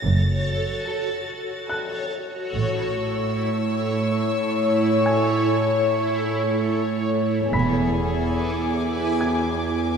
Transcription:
Already playing: synth texture F#4 A4 C#5, grand piano F#6, violin section A6 A#6
0.04 double bass section F#1, cello section F#2
0.32 violin section A6
0.88 violin section A4
1.69 violin section A4, grand piano F#6
2.52 double bass section A1, cello section A2, synth texture E4 A4 C#5, violin section C#5 C#6 E6
5.06 grand piano G#5 G#6
7.52 double bass section E1, cello section E2, synth texture E4 B4 G#5, violin section G#4 G#5, grand piano B5 B6
8.36 violin section D6
9.21 grand piano G#5 G#6

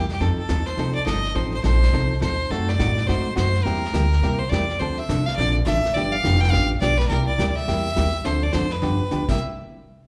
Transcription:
Already playing: upright bass E2
0.09 fiddle G4, snare
0.20 upright bass F2, hollow-body jazz guitar F3 C4 D#4 A4, fiddle A4, brush sweep, snare
0.38 fiddle A4, muted upright bass stroke
0.49 upright bass D#2, hollow-body jazz guitar F3 C4 D#4 A4, snare, hi-hat pedal
0.66 fiddle C5, snare
0.77 upright bass C2, hollow-body jazz guitar F3 C4 D#4 A4, brush sweep, snare
0.94 fiddle D5
1.06 upright bass G1, hollow-body jazz guitar F3 C4 D#4 A4, fiddle D#5, snare, hi-hat pedal
1.25 snare
1.35 upright bass A1, hollow-body jazz guitar F3 C4 D#4 A4, fiddle C5, brush sweep, snare
1.54 fiddle C5
1.63 upright bass A#1, hollow-body jazz guitar F3 C4 D#4 A4, fiddle C5, snare, hi-hat pedal
1.74 snare
1.82 snare
1.93 upright bass C2, hollow-body jazz guitar F3 C4 D#4 A4, brush sweep, snare
2.21 upright bass D#2, hollow-body jazz guitar F3 C4 D#4 A4, fiddle C5, snare, hi-hat pedal
2.50 upright bass F#2, hollow-body jazz guitar C3 F#3 A3 D#4 F#4, fiddle A4, brush sweep, snare
2.69 fiddle D5, snare
2.79 upright bass A2, hollow-body jazz guitar C3 F#3 A3 D#4 F#4, snare, hi-hat pedal
2.97 snare
3.07 upright bass G#2, hollow-body jazz guitar C3 F#3 A3 D#4 F#4, fiddle C5, brush sweep, snare
3.36 upright bass F#2, hollow-body jazz guitar C3 F#3 A3 D#4 F#4, fiddle C5, snare, hi-hat pedal
3.55 snare
3.63 upright bass E2, hollow-body jazz guitar C3 G3 A#3 E4 G4, fiddle A#4, brush sweep, snare
3.75 snare
3.85 snare
3.94 upright bass D2, hollow-body jazz guitar C3 G3 A#3 E4 G4, snare, hi-hat pedal
4.12 snare
4.22 upright bass C2, hollow-body jazz guitar C3 G3 A#3 E4 G4, brush sweep, snare
4.38 fiddle C5
4.49 upright bass E2, hollow-body jazz guitar C3 G3 A#3 E4 G4, fiddle D5, snare, hi-hat pedal
4.69 snare
4.79 upright bass D2, hollow-body jazz guitar D3 F3 C4 D4 A4, fiddle C5, brush sweep, snare
4.97 fiddle E5
5.09 upright bass C2, hollow-body jazz guitar D3 F3 C4 D4 A4, snare, hi-hat pedal
5.25 fiddle F5, snare
5.36 upright bass A#1, hollow-body jazz guitar D3 F3 C4 D4, fiddle D5, brush sweep, snare
5.40 hollow-body jazz guitar A4
5.65 upright bass A1, hollow-body jazz guitar D3 F3 C4 D4 A4, fiddle E5, snare, hi-hat pedal
5.85 snare
5.94 upright bass G1, hollow-body jazz guitar D3 F3 B3 D4 G4, fiddle D5, brush sweep, snare
6.12 fiddle F5
6.24 upright bass F1, hollow-body jazz guitar D3 F3 B3 D4 G4, snare, hi-hat pedal
6.40 fiddle G5, snare
6.50 upright bass A1, hollow-body jazz guitar D3 F3 B3 D4 G4, fiddle F5, brush sweep, snare
6.80 upright bass B1, hollow-body jazz guitar D3 F3 B3 D4 G4, fiddle D5, snare, hi-hat pedal
6.97 fiddle B4, snare
7.08 upright bass C2, hollow-body jazz guitar C3 G3 A#3, fiddle A#4, brush sweep, snare
7.12 hollow-body jazz guitar E4 G4
7.27 fiddle D5
7.38 upright bass D2, hollow-body jazz guitar C3 G3 A#3 E4 G4, snare, hi-hat pedal
7.48 fiddle D5
7.55 fiddle E5, snare
7.68 upright bass E2, hollow-body jazz guitar C3 G3 A#3 E4 G4, brush sweep, snare
7.96 upright bass D#2, hollow-body jazz guitar C3 G3 A#3 E4 G4, snare, hi-hat pedal
8.25 upright bass D2, hollow-body jazz guitar D3 F3 C4 D4 A4, fiddle C5, brush sweep, snare
8.43 fiddle D5
8.52 upright bass F2, hollow-body jazz guitar D3 F3 C4 D4 A4, fiddle C5, snare, hi-hat pedal
8.70 fiddle B4, snare
8.82 upright bass G2, hollow-body jazz guitar D3 F3 B3 D4 G4, brush sweep, snare
9.01 muted upright bass stroke
9.11 upright bass D2, hollow-body jazz guitar D3 F3 B3 D4 G4, hi-hat pedal
9.29 upright bass C2, hollow-body jazz guitar C3 G3 A#3 E4 G4, fiddle E5, kick, snare, crash

